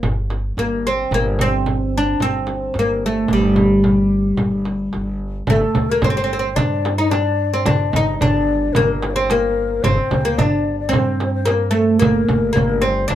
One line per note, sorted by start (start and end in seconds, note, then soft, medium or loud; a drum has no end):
0.03 0.54 G1 medium
0.03 frame drum medium
0.30 frame drum medium
0.57 1.09 G1 medium
0.57 0.86 A#3 medium
0.57 frame drum medium
0.87 1.14 C4 medium
1.11 2.17 G1 medium
1.11 1.41 A#3 medium
1.11 frame drum medium
1.39 1.97 C4 medium
1.39 frame drum medium
1.66 frame drum medium
1.98 2.21 D4 medium
2.20 2.72 G1 medium
2.20 2.78 C4 medium
2.20 frame drum medium
2.47 frame drum medium
2.74 3.27 G1 medium
2.74 frame drum medium
2.79 3.05 A#3 medium
3.06 3.33 A3 medium
3.28 4.36 G1 medium
3.28 frame drum medium
3.33 5.19 G3 medium
3.56 frame drum medium
3.84 frame drum medium
4.37 4.90 G1 medium
4.37 frame drum medium
4.65 frame drum medium
4.93 5.46 G1 medium
4.93 frame drum medium
5.47 5.61 G1 medium
5.47 5.91 A3 medium
5.47 5.91 A4 medium
5.47 frame drum medium
5.47 darbuka dum medium
5.62 darbuka ka soft
5.75 6.02 D2 medium
5.75 frame drum medium
5.75 darbuka dum medium
5.90 6.05 A#3 medium
5.90 6.05 A#4 medium
6.02 6.54 G1 medium
6.02 6.09 C4 medium
6.02 6.08 D5 medium
6.02 frame drum medium
6.02 darbuka dum medium
6.07 6.16 C4 medium
6.07 6.57 C5 medium
6.17 6.23 C4 medium
6.24 6.32 C4 medium
6.33 6.38 C4 medium
6.39 6.48 C4 medium
6.56 7.63 G2 medium
6.56 6.98 D4 medium
6.56 6.97 D5 medium
6.56 6.61 D#5 medium
6.56 darbuka dum medium
6.56 frame drum medium
6.85 darbuka tek medium
6.85 frame drum medium
6.98 7.11 D#4 medium
6.98 7.12 D#5 medium
7.11 7.53 D4 medium
7.11 7.65 D5 medium
7.11 darbuka tek medium
7.11 frame drum medium
7.54 7.66 C4 medium
7.65 7.93 G1 medium
7.65 7.95 D4 medium
7.65 7.94 D5 medium
7.65 frame drum medium
7.65 darbuka dum loud
7.82 darbuka ka soft
7.92 8.20 G1 medium
7.92 8.21 D#4 medium
7.92 8.18 D#5 medium
7.92 frame drum medium
7.92 darbuka dum medium
8.19 8.73 G1 medium
8.19 8.78 D4 medium
8.19 8.74 D5 medium
8.19 frame drum medium
8.19 darbuka dum loud
8.73 9.80 G1 medium
8.73 9.18 A#3 medium
8.73 9.12 A#4 medium
8.73 frame drum medium
8.77 darbuka dum medium
9.02 darbuka tek medium
9.02 frame drum medium
9.10 9.28 C5 medium
9.10 9.15 D5 medium
9.16 9.30 C4 medium
9.28 9.86 A#3 medium
9.28 9.33 C5 medium
9.28 darbuka tek medium
9.28 frame drum medium
9.32 9.84 A#4 medium
9.72 darbuka ka soft
9.83 9.97 G1 medium
9.83 10.26 C4 medium
9.83 9.88 D5 medium
9.83 frame drum medium
9.83 darbuka dum medium
9.87 10.39 C5 medium
10.11 10.37 D2 medium
10.11 frame drum medium
10.11 darbuka dum medium
10.25 10.39 A#3 medium
10.38 10.90 G1 medium
10.38 10.95 D4 medium
10.38 10.43 D#5 medium
10.38 frame drum medium
10.38 darbuka dum medium
10.42 10.79 D5 medium
10.80 10.96 D5 medium
10.89 11.98 G2 medium
10.89 11.45 C4 medium
10.93 11.34 C5 medium
10.93 frame drum medium
10.93 darbuka dum medium
11.20 darbuka tek medium
11.20 frame drum medium
11.34 11.49 C5 medium
11.45 11.70 A#3 medium
11.45 11.55 C5 medium
11.45 darbuka tek medium
11.45 frame drum medium
11.54 11.76 A#4 medium
11.71 11.99 A3 medium
11.99 12.28 G1 medium
11.99 12.52 A#3 medium
11.99 darbuka dum medium
11.99 frame drum medium
12.05 12.54 A#4 medium
12.29 12.55 G1 medium
12.29 frame drum medium
12.29 darbuka dum medium
12.53 13.08 G1 medium
12.53 12.83 A#3 medium
12.53 12.86 A#4 medium
12.53 frame drum medium
12.57 darbuka dum loud
12.71 darbuka ka soft
12.82 13.07 C4 medium
12.82 13.14 C5 medium
13.08 13.15 G1 medium
13.08 13.15 D4 medium
13.08 frame drum medium
13.08 darbuka dum medium